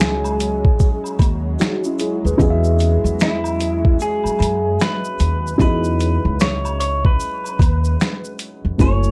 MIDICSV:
0, 0, Header, 1, 8, 480
1, 0, Start_track
1, 0, Tempo, 800000
1, 1436, Time_signature, 4, 2, 24, 8
1, 5466, End_track
2, 0, Start_track
2, 0, Title_t, "Clean electric guitar"
2, 0, Program_c, 0, 27
2, 0, Note_on_c, 0, 68, 79
2, 702, Note_off_c, 0, 68, 0
2, 1935, Note_on_c, 0, 64, 84
2, 2382, Note_off_c, 0, 64, 0
2, 2412, Note_on_c, 0, 68, 94
2, 2888, Note_on_c, 0, 71, 104
2, 2898, Note_off_c, 0, 68, 0
2, 3338, Note_off_c, 0, 71, 0
2, 3370, Note_on_c, 0, 71, 118
2, 3843, Note_off_c, 0, 71, 0
2, 3846, Note_on_c, 0, 73, 101
2, 4065, Note_off_c, 0, 73, 0
2, 4081, Note_on_c, 0, 73, 98
2, 4232, Note_off_c, 0, 73, 0
2, 4235, Note_on_c, 0, 71, 93
2, 5017, Note_off_c, 0, 71, 0
2, 5288, Note_on_c, 0, 73, 112
2, 5466, Note_off_c, 0, 73, 0
2, 5466, End_track
3, 0, Start_track
3, 0, Title_t, "Upright piano"
3, 0, Program_c, 1, 0
3, 0, Control_c, 1, 64, 127
3, 0, Note_on_c, 1, 63, 59
3, 0, Note_on_c, 1, 64, 63
3, 0, Note_on_c, 1, 66, 57
3, 0, Note_on_c, 1, 68, 59
3, 0, Note_on_c, 1, 73, 74
3, 1403, Note_off_c, 1, 64, 0
3, 1408, Note_off_c, 1, 63, 0
3, 1412, Note_off_c, 1, 66, 0
3, 1417, Note_off_c, 1, 68, 0
3, 1421, Note_off_c, 1, 73, 0
3, 1427, Note_on_c, 1, 64, 73
3, 1436, Note_on_c, 1, 75, 69
3, 1444, Note_on_c, 1, 66, 70
3, 1453, Note_on_c, 1, 68, 73
3, 1454, Note_off_c, 1, 75, 0
3, 1463, Note_on_c, 1, 75, 60
3, 1498, Note_off_c, 1, 75, 0
3, 1501, Note_on_c, 1, 76, 90
3, 3327, Note_off_c, 1, 64, 0
3, 3336, Note_off_c, 1, 66, 0
3, 3340, Note_off_c, 1, 68, 0
3, 3347, Note_on_c, 1, 64, 68
3, 3356, Note_on_c, 1, 63, 60
3, 3365, Note_off_c, 1, 76, 0
3, 3365, Note_on_c, 1, 66, 64
3, 3373, Note_on_c, 1, 68, 57
3, 3382, Note_on_c, 1, 75, 71
3, 5248, Note_off_c, 1, 64, 0
3, 5252, Note_off_c, 1, 63, 0
3, 5257, Note_off_c, 1, 66, 0
3, 5261, Note_off_c, 1, 68, 0
3, 5265, Note_off_c, 1, 75, 0
3, 5268, Note_on_c, 1, 54, 57
3, 5277, Note_on_c, 1, 64, 57
3, 5284, Control_c, 1, 64, 0
3, 5289, Note_on_c, 1, 80, 57
3, 5300, Note_on_c, 1, 57, 68
3, 5370, Control_c, 1, 64, 127
3, 5466, Note_off_c, 1, 54, 0
3, 5466, Note_off_c, 1, 57, 0
3, 5466, Note_off_c, 1, 64, 0
3, 5466, Note_off_c, 1, 80, 0
3, 5466, End_track
4, 0, Start_track
4, 0, Title_t, "Tine electric piano"
4, 0, Program_c, 2, 4
4, 959, Note_on_c, 2, 66, 70
4, 962, Note_on_c, 2, 63, 64
4, 1100, Note_off_c, 2, 66, 0
4, 1101, Note_off_c, 2, 63, 0
4, 1114, Note_on_c, 2, 64, 89
4, 1118, Note_on_c, 2, 61, 78
4, 1196, Note_off_c, 2, 64, 0
4, 1198, Note_off_c, 2, 61, 0
4, 1202, Note_on_c, 2, 68, 80
4, 1206, Note_on_c, 2, 64, 68
4, 1341, Note_off_c, 2, 68, 0
4, 1343, Note_off_c, 2, 64, 0
4, 1354, Note_on_c, 2, 71, 80
4, 1356, Note_on_c, 2, 68, 66
4, 2046, Note_off_c, 2, 71, 0
4, 2047, Note_off_c, 2, 68, 0
4, 5466, End_track
5, 0, Start_track
5, 0, Title_t, "Analog synth pad"
5, 0, Program_c, 3, 89
5, 0, Note_on_c, 3, 54, 86
5, 0, Note_on_c, 3, 56, 77
5, 0, Note_on_c, 3, 61, 93
5, 5252, Note_off_c, 3, 54, 0
5, 5252, Note_off_c, 3, 61, 0
5, 5253, Note_off_c, 3, 56, 0
5, 5466, End_track
6, 0, Start_track
6, 0, Title_t, "Upright bass"
6, 0, Program_c, 4, 32
6, 0, Note_on_c, 4, 37, 80
6, 453, Note_off_c, 4, 37, 0
6, 717, Note_on_c, 4, 39, 85
6, 928, Note_off_c, 4, 39, 0
6, 1348, Note_on_c, 4, 39, 84
6, 1426, Note_off_c, 4, 39, 0
6, 1438, Note_on_c, 4, 40, 109
6, 1780, Note_off_c, 4, 40, 0
6, 1825, Note_on_c, 4, 40, 81
6, 2372, Note_off_c, 4, 40, 0
6, 2640, Note_on_c, 4, 42, 89
6, 2849, Note_off_c, 4, 42, 0
6, 3120, Note_on_c, 4, 39, 93
6, 3329, Note_off_c, 4, 39, 0
6, 3360, Note_on_c, 4, 40, 113
6, 3700, Note_off_c, 4, 40, 0
6, 3750, Note_on_c, 4, 37, 93
6, 4294, Note_off_c, 4, 37, 0
6, 4557, Note_on_c, 4, 39, 82
6, 4768, Note_off_c, 4, 39, 0
6, 5188, Note_on_c, 4, 41, 79
6, 5267, Note_off_c, 4, 41, 0
6, 5278, Note_on_c, 4, 30, 104
6, 5466, Note_off_c, 4, 30, 0
6, 5466, End_track
7, 0, Start_track
7, 0, Title_t, "Muted upright bass strokes"
7, 2548, Note_on_c, 9, 29, 53
7, 2608, Note_off_c, 9, 29, 0
7, 5466, End_track
8, 0, Start_track
8, 0, Title_t, "Drums"
8, 0, Note_on_c, 9, 82, 76
8, 5, Note_on_c, 9, 26, 101
8, 8, Note_on_c, 9, 38, 117
8, 58, Note_off_c, 9, 82, 0
8, 65, Note_off_c, 9, 26, 0
8, 68, Note_off_c, 9, 38, 0
8, 146, Note_on_c, 9, 76, 77
8, 150, Note_on_c, 9, 82, 39
8, 206, Note_off_c, 9, 76, 0
8, 210, Note_off_c, 9, 82, 0
8, 237, Note_on_c, 9, 82, 49
8, 242, Note_off_c, 9, 82, 0
8, 242, Note_on_c, 9, 42, 81
8, 242, Note_on_c, 9, 82, 60
8, 302, Note_off_c, 9, 42, 0
8, 302, Note_off_c, 9, 82, 0
8, 388, Note_on_c, 9, 36, 98
8, 448, Note_off_c, 9, 36, 0
8, 477, Note_on_c, 9, 82, 66
8, 480, Note_on_c, 9, 36, 98
8, 537, Note_off_c, 9, 82, 0
8, 540, Note_off_c, 9, 36, 0
8, 624, Note_on_c, 9, 76, 57
8, 634, Note_on_c, 9, 82, 55
8, 684, Note_off_c, 9, 76, 0
8, 695, Note_off_c, 9, 82, 0
8, 713, Note_on_c, 9, 76, 74
8, 713, Note_on_c, 9, 82, 50
8, 716, Note_on_c, 9, 36, 101
8, 730, Note_off_c, 9, 82, 0
8, 730, Note_on_c, 9, 42, 69
8, 730, Note_on_c, 9, 82, 48
8, 773, Note_off_c, 9, 76, 0
8, 776, Note_off_c, 9, 36, 0
8, 790, Note_off_c, 9, 42, 0
8, 790, Note_off_c, 9, 82, 0
8, 955, Note_on_c, 9, 82, 68
8, 967, Note_off_c, 9, 82, 0
8, 967, Note_on_c, 9, 26, 81
8, 967, Note_on_c, 9, 82, 62
8, 970, Note_on_c, 9, 38, 104
8, 1027, Note_off_c, 9, 26, 0
8, 1027, Note_off_c, 9, 82, 0
8, 1030, Note_off_c, 9, 38, 0
8, 1104, Note_on_c, 9, 82, 48
8, 1164, Note_off_c, 9, 82, 0
8, 1191, Note_on_c, 9, 82, 55
8, 1197, Note_off_c, 9, 82, 0
8, 1197, Note_on_c, 9, 42, 63
8, 1197, Note_on_c, 9, 82, 46
8, 1257, Note_off_c, 9, 42, 0
8, 1257, Note_off_c, 9, 82, 0
8, 1359, Note_on_c, 9, 82, 48
8, 1419, Note_off_c, 9, 82, 0
8, 1437, Note_on_c, 9, 36, 106
8, 1440, Note_on_c, 9, 82, 71
8, 1497, Note_off_c, 9, 36, 0
8, 1500, Note_off_c, 9, 82, 0
8, 1584, Note_on_c, 9, 82, 42
8, 1644, Note_off_c, 9, 82, 0
8, 1674, Note_on_c, 9, 82, 52
8, 1682, Note_off_c, 9, 82, 0
8, 1682, Note_on_c, 9, 42, 68
8, 1682, Note_on_c, 9, 82, 43
8, 1742, Note_off_c, 9, 42, 0
8, 1742, Note_off_c, 9, 82, 0
8, 1834, Note_on_c, 9, 82, 48
8, 1894, Note_off_c, 9, 82, 0
8, 1914, Note_on_c, 9, 82, 69
8, 1920, Note_off_c, 9, 82, 0
8, 1920, Note_on_c, 9, 82, 68
8, 1928, Note_on_c, 9, 26, 88
8, 1931, Note_on_c, 9, 38, 111
8, 1980, Note_off_c, 9, 82, 0
8, 1988, Note_off_c, 9, 26, 0
8, 1991, Note_off_c, 9, 38, 0
8, 2064, Note_on_c, 9, 76, 82
8, 2071, Note_on_c, 9, 82, 41
8, 2124, Note_off_c, 9, 76, 0
8, 2131, Note_off_c, 9, 82, 0
8, 2158, Note_on_c, 9, 82, 50
8, 2163, Note_off_c, 9, 82, 0
8, 2163, Note_on_c, 9, 42, 80
8, 2163, Note_on_c, 9, 82, 59
8, 2223, Note_off_c, 9, 42, 0
8, 2223, Note_off_c, 9, 82, 0
8, 2309, Note_on_c, 9, 36, 92
8, 2369, Note_off_c, 9, 36, 0
8, 2395, Note_on_c, 9, 82, 64
8, 2402, Note_off_c, 9, 82, 0
8, 2402, Note_on_c, 9, 82, 63
8, 2462, Note_off_c, 9, 82, 0
8, 2542, Note_on_c, 9, 76, 64
8, 2557, Note_on_c, 9, 82, 53
8, 2602, Note_off_c, 9, 76, 0
8, 2617, Note_off_c, 9, 82, 0
8, 2633, Note_on_c, 9, 76, 69
8, 2633, Note_on_c, 9, 82, 49
8, 2654, Note_off_c, 9, 82, 0
8, 2654, Note_on_c, 9, 42, 68
8, 2654, Note_on_c, 9, 82, 49
8, 2693, Note_off_c, 9, 76, 0
8, 2714, Note_off_c, 9, 42, 0
8, 2714, Note_off_c, 9, 82, 0
8, 2878, Note_on_c, 9, 82, 73
8, 2889, Note_off_c, 9, 82, 0
8, 2889, Note_on_c, 9, 26, 88
8, 2889, Note_on_c, 9, 82, 61
8, 2892, Note_on_c, 9, 38, 109
8, 2949, Note_off_c, 9, 26, 0
8, 2949, Note_off_c, 9, 82, 0
8, 2952, Note_off_c, 9, 38, 0
8, 3026, Note_on_c, 9, 82, 43
8, 3086, Note_off_c, 9, 82, 0
8, 3110, Note_on_c, 9, 82, 53
8, 3120, Note_off_c, 9, 82, 0
8, 3120, Note_on_c, 9, 42, 62
8, 3120, Note_on_c, 9, 82, 47
8, 3180, Note_off_c, 9, 42, 0
8, 3180, Note_off_c, 9, 82, 0
8, 3281, Note_on_c, 9, 82, 45
8, 3341, Note_off_c, 9, 82, 0
8, 3357, Note_on_c, 9, 36, 105
8, 3361, Note_on_c, 9, 82, 62
8, 3365, Note_off_c, 9, 82, 0
8, 3365, Note_on_c, 9, 82, 73
8, 3417, Note_off_c, 9, 36, 0
8, 3425, Note_off_c, 9, 82, 0
8, 3503, Note_on_c, 9, 82, 46
8, 3563, Note_off_c, 9, 82, 0
8, 3596, Note_on_c, 9, 82, 47
8, 3603, Note_off_c, 9, 82, 0
8, 3603, Note_on_c, 9, 42, 60
8, 3603, Note_on_c, 9, 82, 42
8, 3663, Note_off_c, 9, 42, 0
8, 3663, Note_off_c, 9, 82, 0
8, 3839, Note_on_c, 9, 82, 77
8, 3842, Note_off_c, 9, 82, 0
8, 3842, Note_on_c, 9, 82, 69
8, 3847, Note_on_c, 9, 26, 86
8, 3850, Note_on_c, 9, 38, 108
8, 3902, Note_off_c, 9, 82, 0
8, 3907, Note_off_c, 9, 26, 0
8, 3910, Note_off_c, 9, 38, 0
8, 3990, Note_on_c, 9, 76, 75
8, 3991, Note_on_c, 9, 82, 41
8, 4050, Note_off_c, 9, 76, 0
8, 4051, Note_off_c, 9, 82, 0
8, 4082, Note_on_c, 9, 82, 48
8, 4084, Note_off_c, 9, 82, 0
8, 4084, Note_on_c, 9, 42, 78
8, 4084, Note_on_c, 9, 82, 60
8, 4144, Note_off_c, 9, 42, 0
8, 4144, Note_off_c, 9, 82, 0
8, 4228, Note_on_c, 9, 36, 97
8, 4288, Note_off_c, 9, 36, 0
8, 4319, Note_on_c, 9, 82, 67
8, 4320, Note_off_c, 9, 82, 0
8, 4320, Note_on_c, 9, 82, 70
8, 4380, Note_off_c, 9, 82, 0
8, 4466, Note_on_c, 9, 76, 55
8, 4474, Note_on_c, 9, 82, 53
8, 4526, Note_off_c, 9, 76, 0
8, 4534, Note_off_c, 9, 82, 0
8, 4555, Note_on_c, 9, 76, 72
8, 4555, Note_on_c, 9, 82, 46
8, 4556, Note_on_c, 9, 36, 99
8, 4571, Note_off_c, 9, 82, 0
8, 4571, Note_on_c, 9, 42, 66
8, 4571, Note_on_c, 9, 82, 51
8, 4615, Note_off_c, 9, 76, 0
8, 4616, Note_off_c, 9, 36, 0
8, 4631, Note_off_c, 9, 42, 0
8, 4631, Note_off_c, 9, 82, 0
8, 4706, Note_on_c, 9, 82, 50
8, 4766, Note_off_c, 9, 82, 0
8, 4801, Note_on_c, 9, 82, 73
8, 4808, Note_off_c, 9, 82, 0
8, 4808, Note_on_c, 9, 26, 91
8, 4808, Note_on_c, 9, 82, 68
8, 4811, Note_on_c, 9, 38, 102
8, 4868, Note_off_c, 9, 26, 0
8, 4868, Note_off_c, 9, 82, 0
8, 4871, Note_off_c, 9, 38, 0
8, 4946, Note_on_c, 9, 82, 43
8, 5006, Note_off_c, 9, 82, 0
8, 5033, Note_on_c, 9, 82, 60
8, 5035, Note_off_c, 9, 82, 0
8, 5035, Note_on_c, 9, 42, 66
8, 5035, Note_on_c, 9, 82, 47
8, 5095, Note_off_c, 9, 42, 0
8, 5095, Note_off_c, 9, 82, 0
8, 5276, Note_on_c, 9, 36, 100
8, 5278, Note_on_c, 9, 82, 60
8, 5283, Note_off_c, 9, 82, 0
8, 5283, Note_on_c, 9, 82, 69
8, 5336, Note_off_c, 9, 36, 0
8, 5343, Note_off_c, 9, 82, 0
8, 5420, Note_on_c, 9, 82, 44
8, 5466, Note_off_c, 9, 82, 0
8, 5466, End_track
0, 0, End_of_file